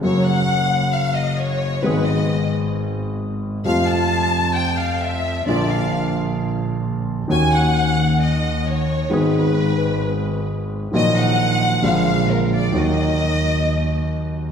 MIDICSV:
0, 0, Header, 1, 4, 480
1, 0, Start_track
1, 0, Key_signature, -6, "minor"
1, 0, Tempo, 500000
1, 13936, End_track
2, 0, Start_track
2, 0, Title_t, "Violin section"
2, 0, Program_c, 0, 48
2, 37, Note_on_c, 0, 73, 89
2, 237, Note_off_c, 0, 73, 0
2, 238, Note_on_c, 0, 78, 99
2, 879, Note_on_c, 0, 77, 91
2, 899, Note_off_c, 0, 78, 0
2, 1099, Note_on_c, 0, 75, 82
2, 1110, Note_off_c, 0, 77, 0
2, 1314, Note_on_c, 0, 73, 85
2, 1329, Note_off_c, 0, 75, 0
2, 1749, Note_on_c, 0, 71, 82
2, 1764, Note_off_c, 0, 73, 0
2, 1970, Note_on_c, 0, 75, 77
2, 1981, Note_off_c, 0, 71, 0
2, 2418, Note_off_c, 0, 75, 0
2, 3507, Note_on_c, 0, 77, 98
2, 3716, Note_off_c, 0, 77, 0
2, 3720, Note_on_c, 0, 81, 102
2, 4368, Note_on_c, 0, 79, 92
2, 4382, Note_off_c, 0, 81, 0
2, 4596, Note_on_c, 0, 77, 87
2, 4597, Note_off_c, 0, 79, 0
2, 4811, Note_on_c, 0, 76, 90
2, 4820, Note_off_c, 0, 77, 0
2, 5254, Note_off_c, 0, 76, 0
2, 5254, Note_on_c, 0, 74, 86
2, 5460, Note_off_c, 0, 74, 0
2, 5471, Note_on_c, 0, 77, 79
2, 5912, Note_off_c, 0, 77, 0
2, 7017, Note_on_c, 0, 80, 105
2, 7217, Note_off_c, 0, 80, 0
2, 7234, Note_on_c, 0, 78, 97
2, 7881, Note_on_c, 0, 75, 86
2, 7886, Note_off_c, 0, 78, 0
2, 8288, Note_off_c, 0, 75, 0
2, 8318, Note_on_c, 0, 73, 85
2, 8755, Note_off_c, 0, 73, 0
2, 8755, Note_on_c, 0, 71, 84
2, 10062, Note_off_c, 0, 71, 0
2, 10517, Note_on_c, 0, 75, 104
2, 10710, Note_off_c, 0, 75, 0
2, 10732, Note_on_c, 0, 78, 110
2, 11376, Note_off_c, 0, 78, 0
2, 11377, Note_on_c, 0, 77, 95
2, 11808, Note_off_c, 0, 77, 0
2, 11813, Note_on_c, 0, 70, 82
2, 12026, Note_off_c, 0, 70, 0
2, 12034, Note_on_c, 0, 74, 89
2, 12230, Note_off_c, 0, 74, 0
2, 12244, Note_on_c, 0, 75, 95
2, 13551, Note_off_c, 0, 75, 0
2, 13936, End_track
3, 0, Start_track
3, 0, Title_t, "Grand piano"
3, 0, Program_c, 1, 0
3, 12, Note_on_c, 1, 49, 53
3, 26, Note_on_c, 1, 54, 64
3, 33, Note_on_c, 1, 42, 61
3, 39, Note_on_c, 1, 58, 52
3, 50, Note_on_c, 1, 66, 58
3, 1681, Note_off_c, 1, 49, 0
3, 1692, Note_off_c, 1, 42, 0
3, 1693, Note_off_c, 1, 54, 0
3, 1695, Note_off_c, 1, 58, 0
3, 1700, Note_off_c, 1, 66, 0
3, 1751, Note_on_c, 1, 51, 54
3, 1762, Note_on_c, 1, 56, 50
3, 1769, Note_on_c, 1, 44, 61
3, 1770, Note_on_c, 1, 32, 63
3, 1774, Note_on_c, 1, 59, 50
3, 1789, Note_on_c, 1, 68, 63
3, 3420, Note_off_c, 1, 51, 0
3, 3425, Note_off_c, 1, 56, 0
3, 3429, Note_off_c, 1, 32, 0
3, 3429, Note_off_c, 1, 44, 0
3, 3431, Note_off_c, 1, 59, 0
3, 3439, Note_off_c, 1, 68, 0
3, 3499, Note_on_c, 1, 48, 55
3, 3509, Note_on_c, 1, 53, 64
3, 3520, Note_on_c, 1, 41, 66
3, 3525, Note_on_c, 1, 57, 50
3, 3538, Note_on_c, 1, 65, 60
3, 5164, Note_off_c, 1, 48, 0
3, 5174, Note_off_c, 1, 41, 0
3, 5174, Note_off_c, 1, 53, 0
3, 5177, Note_off_c, 1, 57, 0
3, 5184, Note_off_c, 1, 65, 0
3, 5244, Note_on_c, 1, 50, 55
3, 5261, Note_on_c, 1, 53, 52
3, 5268, Note_on_c, 1, 46, 66
3, 5269, Note_on_c, 1, 34, 68
3, 5273, Note_on_c, 1, 58, 52
3, 5286, Note_on_c, 1, 65, 63
3, 6914, Note_off_c, 1, 50, 0
3, 6922, Note_off_c, 1, 53, 0
3, 6926, Note_off_c, 1, 34, 0
3, 6926, Note_off_c, 1, 46, 0
3, 6928, Note_off_c, 1, 58, 0
3, 6934, Note_off_c, 1, 65, 0
3, 6987, Note_on_c, 1, 51, 65
3, 6999, Note_on_c, 1, 58, 47
3, 7003, Note_on_c, 1, 39, 65
3, 7009, Note_on_c, 1, 61, 48
3, 7023, Note_on_c, 1, 66, 61
3, 8664, Note_off_c, 1, 58, 0
3, 8666, Note_off_c, 1, 39, 0
3, 8667, Note_off_c, 1, 51, 0
3, 8669, Note_off_c, 1, 61, 0
3, 8676, Note_off_c, 1, 66, 0
3, 8732, Note_on_c, 1, 51, 55
3, 8742, Note_on_c, 1, 56, 48
3, 8745, Note_on_c, 1, 44, 64
3, 8746, Note_on_c, 1, 32, 65
3, 8752, Note_on_c, 1, 59, 48
3, 8767, Note_on_c, 1, 68, 62
3, 10398, Note_off_c, 1, 51, 0
3, 10403, Note_off_c, 1, 56, 0
3, 10405, Note_off_c, 1, 32, 0
3, 10405, Note_off_c, 1, 44, 0
3, 10408, Note_off_c, 1, 59, 0
3, 10416, Note_off_c, 1, 68, 0
3, 10479, Note_on_c, 1, 51, 56
3, 10489, Note_on_c, 1, 54, 52
3, 10498, Note_on_c, 1, 34, 66
3, 10498, Note_on_c, 1, 46, 69
3, 10501, Note_on_c, 1, 58, 55
3, 10511, Note_on_c, 1, 66, 62
3, 11315, Note_off_c, 1, 51, 0
3, 11320, Note_off_c, 1, 54, 0
3, 11324, Note_off_c, 1, 34, 0
3, 11324, Note_off_c, 1, 46, 0
3, 11326, Note_off_c, 1, 58, 0
3, 11331, Note_off_c, 1, 66, 0
3, 11351, Note_on_c, 1, 50, 56
3, 11360, Note_on_c, 1, 56, 50
3, 11369, Note_on_c, 1, 34, 64
3, 11371, Note_on_c, 1, 46, 61
3, 11374, Note_on_c, 1, 58, 49
3, 11386, Note_on_c, 1, 65, 63
3, 12187, Note_off_c, 1, 50, 0
3, 12192, Note_off_c, 1, 56, 0
3, 12196, Note_off_c, 1, 34, 0
3, 12197, Note_off_c, 1, 46, 0
3, 12198, Note_off_c, 1, 58, 0
3, 12205, Note_off_c, 1, 65, 0
3, 12215, Note_on_c, 1, 51, 69
3, 12226, Note_on_c, 1, 54, 52
3, 12233, Note_on_c, 1, 39, 64
3, 12239, Note_on_c, 1, 58, 51
3, 12251, Note_on_c, 1, 66, 61
3, 13892, Note_off_c, 1, 54, 0
3, 13895, Note_off_c, 1, 39, 0
3, 13896, Note_off_c, 1, 51, 0
3, 13898, Note_off_c, 1, 58, 0
3, 13904, Note_off_c, 1, 66, 0
3, 13936, End_track
4, 0, Start_track
4, 0, Title_t, "Double bass"
4, 0, Program_c, 2, 43
4, 33, Note_on_c, 2, 30, 72
4, 1692, Note_off_c, 2, 30, 0
4, 1784, Note_on_c, 2, 32, 71
4, 3436, Note_off_c, 2, 32, 0
4, 3520, Note_on_c, 2, 41, 71
4, 5174, Note_off_c, 2, 41, 0
4, 5265, Note_on_c, 2, 34, 75
4, 6924, Note_off_c, 2, 34, 0
4, 7010, Note_on_c, 2, 39, 75
4, 8669, Note_off_c, 2, 39, 0
4, 8755, Note_on_c, 2, 32, 70
4, 10410, Note_off_c, 2, 32, 0
4, 10495, Note_on_c, 2, 34, 70
4, 11323, Note_off_c, 2, 34, 0
4, 11366, Note_on_c, 2, 34, 80
4, 12195, Note_off_c, 2, 34, 0
4, 12232, Note_on_c, 2, 39, 75
4, 13895, Note_off_c, 2, 39, 0
4, 13936, End_track
0, 0, End_of_file